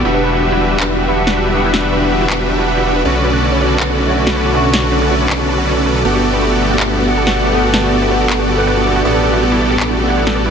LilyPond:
<<
  \new Staff \with { instrumentName = "Supersaw synth" } { \time 4/4 \key g \lydian \tempo 4 = 160 <d' fis' g' b' e''>1~ | <d' fis' g' b' e''>1 | <cis' fis' a' b' d''>1~ | <cis' fis' a' b' d''>1 |
<b fis' g' a' d''>1~ | <b fis' g' a' d''>1 | <b fis' g' a' d''>1 | }
  \new Staff \with { instrumentName = "Synth arpeggio sound" } { \time 4/4 \key g \lydian e'16 b'16 b'16 e'16 g'16 e'16 e'16 b'16 b'16 e'16 g'16 e'16 e'16 b'16 b'16 e'16 | g'16 e'16 e'16 b'16 b'16 e'16 g'16 e'16 e'16 b'16 b'16 e'16 g'16 e'16 e'16 b'16 | cis''16 fis'16 b'16 fis'16 fis'16 cis''16 cis''16 fis'16 b'16 fis'16 fis'16 cis''16 cis''16 fis'16 b'16 fis'16 | fis'16 cis''16 cis''16 fis'16 b'16 fis'16 fis'16 cis''16 cis''16 fis'16 a''16 fis'16 cis''16 a'16 a'16 a'16 |
a'16 fis'16 fis'16 b'16 b'16 fis'16 a'16 fis'16 r16 b'16 b'16 fis'16 a'16 fis'16 fis'16 b'16 | b'16 fis'16 a'16 fis'16 fis'16 b'16 b'16 fis'16 a'16 fis'16 fis'16 b'16 b'16 fis'16 a'16 fis'16 | e'16 a'16 a'16 e'16 g'16 e'16 e'16 a'16 a'16 e'16 g'16 e'16 e'16 a'16 a'16 e'16 | }
  \new Staff \with { instrumentName = "Tine electric piano" } { \time 4/4 \key g \lydian <g b d' fis''>2~ <g b d' fis''>8. <g b d' fis''>4~ <g b d' fis''>16 | <g b d' fis''>2~ <g b d' fis''>8. <g b d' fis''>4~ <g b d' fis''>16 | <d a fis'>2~ <d a fis'>8. <d a fis'>4~ <d a fis'>16 | <d a fis'>2~ <d a fis'>8. r4 r16 |
<a b d' fis''>2~ <a b d' fis''>8. <a b d' fis''>4~ <a b d' fis''>16 | <a b d' fis''>2~ <a b d' fis''>8. <a b d' fis''>4~ <a b d' fis''>16 | <g b d' fis''>2~ <g b d' fis''>8. <g b d' fis''>4~ <g b d' fis''>16 | }
  \new Staff \with { instrumentName = "Detuned saw bass" } { \clef bass \time 4/4 \key g \lydian e,,1~ | e,,1 | b,,1~ | b,,1 |
g,,1~ | g,,1 | a,,1 | }
  \new DrumStaff \with { instrumentName = "Drums" } \drummode { \time 4/4 r4 r4 hc4 r16 sn8. | r8 sn8 r4 hc4 r4 | r4 r4 hc4 r16 sn8. | r8 sn8 r4 hc4 r4 |
r4 r4 hc4 r16 sn8. | r8 sn8 r4 hc4 r4 | r4 r4 hc4 r16 sn8. | }
>>